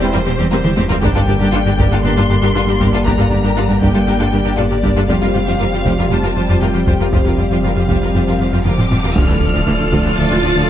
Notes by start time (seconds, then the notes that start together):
Already playing: E1 G3 C4 G4 C5
0.00 E1 E2 E3 G3 C4 G4 C5
0.13 E2 G3 C4 F4 A#4
0.26 E1 E2 G3 C4 G4 C5
0.38 E2 G3 C4 G4 C5
0.51 E1 E2 G3 C4 F4 A#4 C5, taiko high
0.64 E2 E3 G3 C4 G4 C5, taiko mid
0.76 E1 E2 G3 C4 G4 C5, taiko high
0.90 E2 G3 C4 F4 A#4, taiko low
1.01 G1 G2 D3 G3 A#3 D4 G4 A#4 D5 G5, taiko
1.15 G2 G3 D4 F4 A4
1.27 G1 G2 G3 D4 G4 A#4
1.39 G2 G3 D4 G4 A#4
1.53 G1 G2 G3 D4 F4 A4
1.65 G2 G3 D4 G4 A#4
1.78 G1 G2 G3 D4 G4 A#4, taiko
1.91 G2 G3 D4 F4 A4
2.04 G1 G2 G3 D4 G4 A#4 C6
2.17 G2 G3 D4 F4 A4
2.29 G1 G2 G3 D4 G4 A#4
2.42 G2 G3 D4 G4 A#4
2.55 G1 G2 G3 D4 F4 A4
2.67 G2 G3 D4 G4 A#4
2.79 G1 G2 G3 D4 G4 A#4, taiko
2.92 G2 G3 D4 F4 A4
3.05 G1 G2 G3 D4 G4 A#4 A#5, taiko
3.18 G2 G3 D4 F4 A4
3.30 G1 G2 G3 D4 G4 A#4
3.43 G2 G3 D4 G4 A#4
3.56 G1 G2 G3 D4 F4 A4
3.69 G2 G3 D4 G4 A#4
3.81 G1 G2 G3 D4 G4 A#4 G5, taiko
3.94 G2 G3 D4 F4 A4
4.06 G1 G2 G3 D4 G4 A#4
4.20 G2 G3 D4 F4 A4
4.32 G1 G2 G3 D4 G4 A#4
4.44 G2 G3 D4 G4 A#4
4.57 G1 G2 G3 D4 F4 A4 D5, taiko low-mid
4.70 G2 G3 D4 G4 A#4, taiko low-mid
4.83 G1 G2 G3 D4 G4 A#4, taiko
4.96 G2 G3 D4 F4 A4
5.08 F1 F2 C3 G3 C4 F4 G4 C5 F5, taiko
5.21 F2 G3 F4 A#4
5.33 F1 F2 G3 F4 G4 C5
5.47 F2 G3 F4 G4 C5
5.59 F1 F2 F3 G3 F4 A#4
5.72 F2 G3 F4 G4 C5
5.85 F1 F2 G3 F4 G4 C5, taiko
5.98 F2 G3 F4 A#4
6.10 F1 F2 G3 F4 G4 C5 A5
6.23 F2 G3 F4 A#4
6.36 F1 F2 G3 F4 G4 C5
6.48 F2 G3 F4 G4 C5
6.61 F1 F2 G3 F4 A#4 G5, taiko low-mid
6.73 F2 F3 G3 F4 G4 C5, taiko low-mid
6.86 F1 F2 G3 F4 G4 C5, taiko
7.00 F2 G3 F4 A#4
7.12 F1 F2 G3 F4 G4 C5 F5, taiko, cymbal swell
7.25 F2 G3 F4 A#4
7.37 F1 F2 G3 F4 G4 C5
7.50 F2 G3 F4 G4 C5
7.63 F1 F2 F3 G3 F4 A#4
7.76 F2 G3 F4 G4
7.80 C5
7.88 F1 F2 G3 F4 G4 C5, taiko
8.02 F2 G3 F4 A#4
8.14 F1 F2 G3 F4 G4 C5
8.27 F2 G3 F4 A#4
8.39 F1 F2 G3 F4 G4 C5
8.52 F2 G3 F4 G4 C5
8.64 F1 F2 G3 F4 A#4 D6, taiko mid
8.77 F2 F3 G3 F4 G4 C5, taiko low-mid
8.90 F1 F2 G3 F4 G4 C5, taiko low-mid
9.03 F2 G3 F4 A#4, taiko low
9.14 D1 D2 A2 F3 A3 D4 F4 A4 D5 F6, taiko, impact
9.28 D2 E3
9.41 D2 F3
9.53 D2 F3
9.66 D2 D3 E3
9.79 D2 F3
9.92 D2 F3, taiko
10.05 D2 E3
10.17 D2 F3 A6
10.31 D2 E3
10.43 D2 F3
10.55 D2 F3